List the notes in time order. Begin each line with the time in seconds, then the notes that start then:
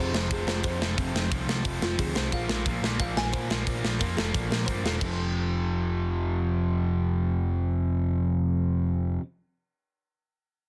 Already playing: F1 F2 C3 F3
0.00 C5
0.13 F1 F2 C3 F3 C5, snare
0.30 F1 F2 C3 F3 G#4, kick, open hi-hat
0.46 F1 C5, snare
0.63 F2 C3 F3 C5, kick, open hi-hat
0.81 F1 F2 C3 F3, snare
0.97 F1 F2 C3 F3, kick, open hi-hat
1.14 F1, snare
1.31 C2 F2 C3 F3, kick, open hi-hat
1.48 C2 F2 C3 F3, snare
1.64 F1 F2 C3 F3, kick, open hi-hat
1.82 F1 F4, snare
1.98 D2 F2 C3 F3 G#4, kick, open hi-hat
2.14 C2 F2 C3 F3 C5, snare
2.31 A#1 A#2 F3 A#3 F5, kick, open hi-hat
2.49 A#1, snare
2.65 A#1 A#2 F3 A#3, kick, open hi-hat
2.82 A#1 A#2 F3 A#3, snare
2.99 A#1 A#2 F3 A#3 F5, kick, open hi-hat
3.16 A#1 G#5, snare
3.33 A#2 F3 A#3 C5, kick, open hi-hat
3.50 A#1 A#2 F3 A#3 A#4, snare
3.66 A#1 A#2 F3 A#3, kick, open hi-hat
3.84 A#1, snare
3.99 F2 A#2 F3 A#3 A#4, kick, open hi-hat
4.17 F1 A#2 F3 A#3 A4, snare
4.34 A#1 A#2 F3 A#3, kick, open hi-hat
4.50 A#1 A#4, snare
4.66 G2 A#2 F3 A#3 C5, kick, open hi-hat
4.84 E1 A#2 F3 A#3 A4, snare
5.00 F1 F2 C3, kick, crash
5.04 F3